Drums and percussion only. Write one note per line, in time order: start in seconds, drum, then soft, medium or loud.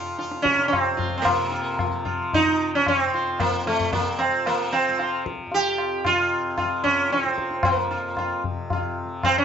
0.19 tabla te medium
0.31 tabla te medium
0.45 tabla ke medium
0.59 tabla te medium
0.73 tabla na medium
0.73 tabla ge medium
0.99 tabla ge medium
1.25 tabla na loud
1.25 tabla ge medium
1.79 tabla na medium
1.79 tabla ge medium
2.06 tabla ge medium
2.33 tabla tin medium
2.33 tabla ge medium
2.86 tabla na medium
2.86 tabla ge medium
3.40 tabla na medium
3.40 tabla ge medium
3.66 tabla te medium
3.80 tabla ge medium
3.92 tabla tin medium
3.92 tabla ge medium
4.19 tabla na medium
4.46 tabla na medium
4.74 tabla na medium
4.99 tabla na medium
5.26 tabla ke medium
5.52 tabla tin medium
5.78 tabla na medium
6.05 tabla na medium
6.05 tabla ge medium
6.58 tabla na medium
6.58 tabla ge medium
6.84 tabla ge medium
7.10 tabla te medium
7.24 tabla te medium
7.38 tabla ke medium
7.51 tabla te medium
7.63 tabla na medium
7.63 tabla ge medium
8.17 tabla na medium
8.17 tabla ge medium
8.44 tabla ge medium
8.70 tabla tin medium
8.70 tabla ge medium
9.23 tabla na medium
9.23 tabla ge medium